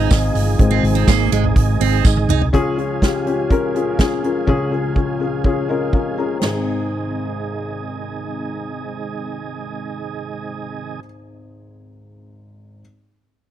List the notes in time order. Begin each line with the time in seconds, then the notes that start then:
Already playing: C3 D#3 G#3 C4 D#4 F4 G#4 D#5 F5
0.11 G#1, kick, snare, hi-hat pedal, open hi-hat, tambourine
0.35 G1, hi-hat pedal, open hi-hat
0.59 G#1 D#3 G#3 C4, kick, hi-hat pedal, open hi-hat
0.71 C4
0.83 G#1, hi-hat pedal, open hi-hat
0.95 C4
1.08 G#1 A#3, kick, snare, hi-hat pedal, open hi-hat, tambourine
1.32 G#1 G#3, hi-hat pedal, open hi-hat
1.44 floor tom
1.56 G#1, kick, hi-hat pedal, open hi-hat
1.80 G#1 C4, hi-hat pedal, open hi-hat
2.05 G#1, kick, snare, tambourine
2.17 high tom
2.28 C2 D#4, mid tom
2.42 floor tom
2.53 C#2 C#3 F3 G#3 C#4 F4 G#4, kick, closed hi-hat
2.77 C#4 F4 G#4, closed hi-hat
3.02 C#4 F4 G4, kick, snare, closed hi-hat
3.26 C#4 F4 G4, closed hi-hat
3.50 C#4 F4 A#4, kick, closed hi-hat
3.74 C#4 F4 G#4, closed hi-hat
3.99 C#4 F4 G#4, kick, snare, closed hi-hat
4.23 C#4 F4 A#4, closed hi-hat
4.47 C#2 C#3 C#4 F4 G#4, kick
4.71 C#4 F4 G#4
4.95 C#4 F4 G#4, kick
5.19 C#4 F4 G#4
5.44 C#4 F4 G#4, kick
5.69 C#4 F4 A#4 D#5
5.93 C#4 F4 A#4 F5, kick
6.17 C#4 F4 G#4 A#5
6.39 G#1 C3 D#3 G#3 C4 D#4 G#4, snare, crash
6.45 G#4